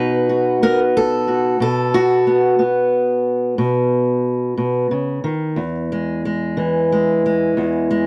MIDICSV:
0, 0, Header, 1, 2, 480
1, 0, Start_track
1, 0, Tempo, 662252
1, 1161, Time_signature, 12, 3, 24, 8
1, 5846, End_track
2, 0, Start_track
2, 0, Title_t, "Steel-string acoustic guitar"
2, 0, Program_c, 0, 25
2, 0, Note_on_c, 0, 47, 69
2, 0, Note_on_c, 0, 59, 55
2, 0, Note_on_c, 0, 63, 48
2, 0, Note_on_c, 0, 66, 44
2, 0, Note_on_c, 0, 71, 103
2, 204, Note_off_c, 0, 66, 0
2, 212, Note_on_c, 0, 66, 43
2, 446, Note_off_c, 0, 71, 0
2, 451, Note_off_c, 0, 59, 0
2, 454, Note_on_c, 0, 59, 62
2, 457, Note_on_c, 0, 70, 95
2, 573, Note_off_c, 0, 70, 0
2, 702, Note_on_c, 0, 69, 103
2, 916, Note_off_c, 0, 66, 0
2, 925, Note_on_c, 0, 66, 44
2, 1134, Note_off_c, 0, 66, 0
2, 1137, Note_off_c, 0, 63, 0
2, 1153, Note_off_c, 0, 47, 0
2, 1161, Note_on_c, 0, 47, 64
2, 1165, Note_off_c, 0, 69, 0
2, 1173, Note_on_c, 0, 69, 101
2, 1195, Note_off_c, 0, 59, 0
2, 1408, Note_on_c, 0, 66, 101
2, 1644, Note_on_c, 0, 59, 45
2, 1874, Note_off_c, 0, 59, 0
2, 1877, Note_on_c, 0, 59, 62
2, 1884, Note_off_c, 0, 66, 0
2, 1887, Note_off_c, 0, 69, 0
2, 2587, Note_off_c, 0, 47, 0
2, 2596, Note_on_c, 0, 47, 75
2, 3307, Note_off_c, 0, 47, 0
2, 3316, Note_on_c, 0, 47, 61
2, 3556, Note_off_c, 0, 47, 0
2, 3559, Note_on_c, 0, 49, 59
2, 3794, Note_off_c, 0, 49, 0
2, 3797, Note_on_c, 0, 51, 57
2, 4032, Note_on_c, 0, 40, 68
2, 4039, Note_off_c, 0, 51, 0
2, 4288, Note_off_c, 0, 59, 0
2, 4291, Note_on_c, 0, 56, 44
2, 4530, Note_off_c, 0, 56, 0
2, 4533, Note_on_c, 0, 56, 46
2, 4762, Note_on_c, 0, 52, 64
2, 5007, Note_off_c, 0, 56, 0
2, 5018, Note_on_c, 0, 56, 49
2, 5249, Note_off_c, 0, 56, 0
2, 5260, Note_on_c, 0, 56, 49
2, 5476, Note_off_c, 0, 40, 0
2, 5487, Note_on_c, 0, 40, 75
2, 5722, Note_off_c, 0, 56, 0
2, 5730, Note_on_c, 0, 56, 54
2, 5846, Note_off_c, 0, 40, 0
2, 5846, Note_off_c, 0, 52, 0
2, 5846, Note_off_c, 0, 56, 0
2, 5846, End_track
0, 0, End_of_file